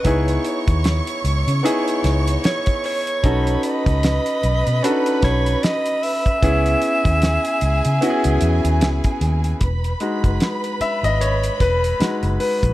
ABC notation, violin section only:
X:1
M:4/4
L:1/8
Q:"Swing 16ths" 1/4=75
K:E
V:1 name="Violin section"
[cc']8 | [Bb]8 | [Gg]8 | [Bb]8 |]